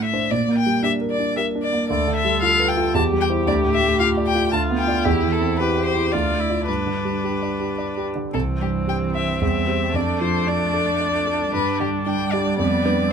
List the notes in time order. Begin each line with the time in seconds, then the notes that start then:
Already playing: A2 A3 D4
0.04 E5
0.13 D4 C5
0.31 A#2 D5
0.48 A#3
0.58 G5
0.66 G3
0.83 D4 G4 E5
1.01 A#4
1.10 D5
1.19 D4
1.37 G4 A#4 E5
1.55 D4
1.62 D5
1.73 A#3
1.89 D2 A4 D5
2.08 D3
2.16 E5
2.25 G3
2.42 F4 F5
2.60 B4
2.68 G5
2.77 F4
2.94 E2 G4 A5
3.12 G3
3.21 G5
3.29 E4 C5
3.47 D2 D5
3.64 A2
3.74 E5
3.82 A3
3.99 F4 F5
4.17 D5
4.27 G5
4.35 F4
4.53 D2 F4 A5
4.70 B3
4.79 G5
4.87 F4 D5
5.05 E2 E4 G4
5.23 E3
5.32 A4
5.41 C4
5.58 E4 G4 B4
5.78 C5
5.85 C5
5.95 E4
6.12 D2 F4 D5
6.32 A3
6.40 E4
6.50 F4 D5
6.67 G2 D4 B4
6.86 D3
7.05 G3
7.24 G4
7.42 D5
7.60 G4
7.78 D5
7.97 G4
8.15 D3
8.34 C2 E3 C4 A4
8.61 G2 G4
8.87 G4 G5
9.15 E5
9.41 E2 G3 E5
9.67 G4 C5
9.94 F2 A3 D4 D5
10.21 F3 C5
10.47 D4 D5
10.74 A4
11.00 D5
11.27 A4
11.52 G2 G3 B4
11.80 D3 G4
12.06 D4 G5
12.32 G4 D5
12.59 F2 B3 D5
12.85 D4 B4